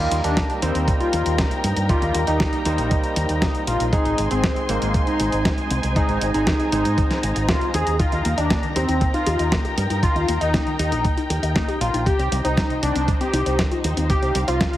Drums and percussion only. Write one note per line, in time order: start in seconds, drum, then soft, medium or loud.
0.12 closed hi-hat medium
0.24 closed hi-hat medium
0.37 kick loud
0.37 snare loud
0.37 closed hi-hat medium
0.50 closed hi-hat soft
0.62 closed hi-hat medium
0.75 closed hi-hat medium
0.88 kick loud
0.88 closed hi-hat medium
1.00 closed hi-hat soft
1.13 closed hi-hat medium
1.26 closed hi-hat medium
1.38 kick loud
1.38 snare loud
1.38 closed hi-hat medium
1.51 closed hi-hat soft
1.64 closed hi-hat loud
1.77 closed hi-hat medium
1.89 kick loud
1.89 closed hi-hat medium
2.02 closed hi-hat soft
2.15 closed hi-hat medium
2.27 closed hi-hat medium
2.40 kick loud
2.40 snare loud
2.40 closed hi-hat medium
2.53 closed hi-hat soft
2.65 closed hi-hat medium
2.78 closed hi-hat medium
2.91 kick loud
2.91 closed hi-hat medium
3.04 closed hi-hat soft
3.16 closed hi-hat medium
3.29 closed hi-hat soft
3.42 kick loud
3.42 snare loud
3.42 closed hi-hat soft
3.55 closed hi-hat soft
3.67 closed hi-hat medium
3.80 closed hi-hat medium
3.93 kick loud
3.93 closed hi-hat medium
4.05 closed hi-hat soft
4.18 closed hi-hat medium
4.31 closed hi-hat medium
4.43 kick loud
4.43 snare loud
4.43 closed hi-hat medium
4.56 closed hi-hat soft
4.69 closed hi-hat medium
4.82 closed hi-hat soft
4.94 kick loud
4.94 closed hi-hat soft
5.07 closed hi-hat soft
5.20 closed hi-hat medium
5.32 closed hi-hat soft
5.45 kick loud
5.45 snare loud
5.45 closed hi-hat soft
5.58 closed hi-hat soft
5.71 closed hi-hat medium
5.83 closed hi-hat medium
5.96 kick loud
5.96 closed hi-hat soft
6.09 closed hi-hat soft
6.21 closed hi-hat medium
6.34 closed hi-hat soft
6.47 kick loud
6.47 snare loud
6.47 closed hi-hat medium
6.60 closed hi-hat soft
6.72 closed hi-hat medium
6.85 closed hi-hat soft
6.98 kick loud
6.98 closed hi-hat soft
7.11 snare soft
7.11 closed hi-hat soft
7.23 closed hi-hat medium
7.36 closed hi-hat soft
7.49 kick loud
7.49 snare loud
7.49 closed hi-hat soft
7.61 closed hi-hat soft
7.74 closed hi-hat medium
7.87 closed hi-hat soft
7.99 kick loud
7.99 closed hi-hat medium
8.12 closed hi-hat soft
8.25 closed hi-hat medium
8.38 closed hi-hat soft
8.50 kick loud
8.50 snare loud
8.50 closed hi-hat medium
8.63 closed hi-hat soft
8.76 closed hi-hat medium
8.89 closed hi-hat soft
9.01 kick loud
9.01 closed hi-hat soft
9.14 closed hi-hat soft
9.26 closed hi-hat medium
9.39 closed hi-hat soft
9.52 kick loud
9.52 snare loud
9.52 closed hi-hat soft
9.65 closed hi-hat soft
9.78 closed hi-hat medium
9.90 closed hi-hat soft
10.03 kick loud
10.03 closed hi-hat medium
10.16 closed hi-hat soft
10.29 closed hi-hat medium
10.41 closed hi-hat medium
10.54 kick loud
10.54 snare loud
10.54 closed hi-hat medium
10.67 closed hi-hat soft
10.79 closed hi-hat medium
10.92 closed hi-hat medium
11.05 kick loud
11.05 closed hi-hat medium
11.18 closed hi-hat soft
11.30 closed hi-hat medium
11.43 closed hi-hat medium
11.55 kick loud
11.55 snare loud
11.55 closed hi-hat soft
11.69 closed hi-hat soft
11.81 closed hi-hat medium
11.94 closed hi-hat medium
12.06 kick loud
12.06 closed hi-hat medium
12.19 closed hi-hat soft
12.32 closed hi-hat loud
12.45 closed hi-hat medium
12.57 kick loud
12.57 snare loud
12.57 closed hi-hat medium
12.70 closed hi-hat soft
12.83 closed hi-hat loud
12.96 closed hi-hat medium
13.08 kick loud
13.08 closed hi-hat medium
13.21 closed hi-hat soft
13.34 closed hi-hat medium
13.46 closed hi-hat medium
13.59 kick loud
13.59 snare loud
13.59 closed hi-hat medium
13.72 closed hi-hat soft
13.84 closed hi-hat medium
13.97 closed hi-hat medium
14.10 kick loud
14.10 closed hi-hat medium
14.23 closed hi-hat soft
14.35 closed hi-hat loud
14.48 closed hi-hat medium
14.61 kick loud
14.61 snare loud
14.61 closed hi-hat medium
14.73 closed hi-hat soft